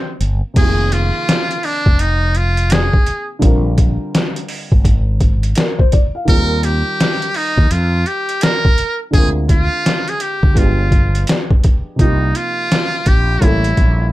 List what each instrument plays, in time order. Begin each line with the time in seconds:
Already playing: upright piano C3 F3 A#3 C4 A#4, muted trumpet C4
0.21 fretless electric bass G1, closed hi-hat
0.54 fretless electric bass F1, upright piano C3 F3 A#3, muted trumpet G#4, kick, closed hi-hat, crash
0.58 upright piano D#3 G4
0.67 upright piano G#4
0.92 muted trumpet F4, closed hi-hat
1.29 snare, closed hi-hat
1.51 closed hi-hat
1.63 muted trumpet D4, open hi-hat
1.86 fretless electric bass F1, kick
1.99 muted trumpet D#4, closed hi-hat
2.35 muted trumpet F4, closed hi-hat
2.57 closed hi-hat
2.70 muted trumpet G#4, snare, closed hi-hat
2.93 kick
3.06 closed hi-hat
3.39 fretless electric bass A#1, upright piano D3 G3 C4, kick, closed hi-hat
3.44 upright piano F4 A#4
3.78 kick, closed hi-hat
4.15 snare, closed hi-hat
4.36 closed hi-hat
4.48 open hi-hat
4.72 fretless electric bass G#1, kick
4.85 kick, closed hi-hat
5.20 kick, closed hi-hat
5.43 closed hi-hat
5.55 upright piano A#4, snare, closed hi-hat
5.78 upright piano C5, kick
5.92 upright piano D5, kick, closed hi-hat
6.15 upright piano F5
6.25 fretless electric bass D#2, upright piano D#3 G3 C4, muted trumpet A#4, kick, closed hi-hat
6.30 upright piano F4 G#4
6.38 upright piano A#4
6.63 muted trumpet G4, closed hi-hat
7.00 snare, closed hi-hat
7.22 closed hi-hat
7.34 muted trumpet D#4, open hi-hat
7.58 fretless electric bass D#2, kick
7.71 fretless electric bass F2, muted trumpet F4, closed hi-hat
8.06 muted trumpet G4, closed hi-hat
8.29 closed hi-hat
8.41 muted trumpet A#4, snare, closed hi-hat
8.65 kick
8.78 closed hi-hat
9.11 fretless electric bass D2, upright piano D3 G#3 C4, muted trumpet G#4, kick, closed hi-hat
9.16 upright piano F4 A#4
9.49 muted trumpet F4, kick, closed hi-hat
9.86 snare, closed hi-hat
10.08 muted trumpet G#4, closed hi-hat
10.20 muted trumpet G4, closed hi-hat
10.43 fretless electric bass D2, kick
10.54 fretless electric bass G1, upright piano F3 G#3 B3, kick, closed hi-hat
10.58 upright piano D4 G4, muted trumpet F4
10.92 kick, closed hi-hat
11.15 closed hi-hat
11.27 snare, closed hi-hat
11.51 kick
11.64 kick, closed hi-hat
11.96 fretless electric bass C2, upright piano C3 F3 A#3, kick, closed hi-hat
12.00 muted trumpet D#4, upright piano D#4 G4
12.35 muted trumpet F4, closed hi-hat
12.72 snare, closed hi-hat
13.06 fretless electric bass A#1, muted trumpet G4, kick, closed hi-hat
13.39 fretless electric bass A1, upright piano G3 A#3 C#4, kick, closed hi-hat
13.43 upright piano E4 A4, muted trumpet E4
13.64 closed hi-hat
13.77 fretless electric bass A#1, kick, closed hi-hat